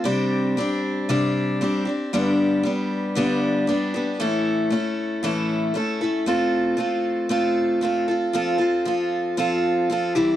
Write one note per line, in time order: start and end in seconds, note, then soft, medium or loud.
0.04 0.56 C3 medium
0.04 0.57 G3 medium
0.04 0.57 C4 medium
0.04 0.58 D4 medium
0.04 0.60 G4 medium
0.57 1.09 G3 medium
0.57 1.09 C4 medium
0.57 1.09 D4 medium
0.57 1.10 G4 medium
1.09 1.60 C3 medium
1.09 1.60 G3 medium
1.09 1.61 C4 medium
1.09 1.61 D4 medium
1.09 1.61 G4 medium
1.61 1.86 G3 medium
1.61 1.87 C4 medium
1.61 1.86 D4 medium
1.61 1.84 G4 medium
1.85 2.13 C4 soft
1.85 2.12 D4 soft
1.85 2.12 G4 soft
2.13 2.64 G2 medium
2.13 2.65 D3 medium
2.13 2.62 G3 medium
2.13 2.64 B3 medium
2.13 2.64 D4 medium
2.13 2.65 G4 medium
2.63 3.16 G3 medium
2.63 3.16 B3 medium
2.63 3.16 D4 medium
2.63 3.17 G4 medium
3.15 3.68 G2 medium
3.15 3.68 D3 medium
3.15 3.66 G3 medium
3.15 3.67 B3 medium
3.15 3.68 D4 medium
3.15 3.69 G4 medium
3.67 3.93 G3 medium
3.67 3.94 B3 medium
3.67 3.93 D4 medium
3.67 3.93 G4 medium
3.94 4.19 G3 soft
3.94 4.20 B3 soft
3.94 4.20 D4 soft
3.94 4.20 G4 medium
4.20 4.71 A2 medium
4.20 4.72 E3 medium
4.20 4.70 A3 medium
4.20 4.71 C#4 medium
4.20 4.72 E4 medium
4.20 4.73 A4 medium
4.70 5.23 A3 medium
4.70 5.23 C#4 medium
4.70 5.23 E4 medium
4.70 5.24 A4 medium
5.23 5.75 A2 medium
5.23 5.75 E3 medium
5.23 5.73 A3 medium
5.23 5.74 C#4 medium
5.23 5.75 E4 medium
5.23 5.76 A4 medium
5.74 6.00 A3 medium
5.74 6.01 C#4 medium
5.74 6.00 E4 medium
5.74 6.00 A4 medium
6.01 6.25 A3 soft
6.01 6.27 C#4 soft
6.01 6.27 E4 soft
6.01 6.27 A4 soft
6.26 6.76 A3 medium
6.26 6.77 C4 medium
6.26 6.78 F4 medium
6.26 6.79 A4 medium
6.77 7.28 A3 medium
6.77 7.29 C4 medium
6.77 7.30 F4 medium
6.77 7.30 A4 medium
7.29 7.80 A3 medium
7.29 7.81 C4 medium
7.29 7.82 F4 medium
7.29 7.83 A4 medium
7.81 8.08 A3 medium
7.81 8.08 C4 medium
7.81 8.08 F4 medium
7.81 8.07 A4 medium
8.08 8.33 C4 soft
8.08 8.33 F4 soft
8.08 8.34 A4 soft
8.33 8.60 F3 medium
8.33 8.60 C4 medium
8.33 8.58 F4 medium
8.33 8.57 A4 medium
8.58 8.85 C4 soft
8.58 8.85 F4 soft
8.58 8.85 A4 soft
8.85 9.36 F3 medium
8.85 9.37 C4 medium
8.85 9.38 F4 medium
8.85 9.39 A4 medium
9.37 9.88 F3 medium
9.37 9.89 C4 medium
9.37 9.90 F4 medium
9.37 9.90 A4 medium
9.90 10.15 F3 medium
9.90 10.15 C4 medium
9.90 10.15 F4 medium
9.90 10.15 A4 medium
10.15 10.36 E3 medium
10.15 10.36 G3 medium
10.15 10.36 C4 medium
10.15 10.36 E4 medium
10.15 10.36 G4 medium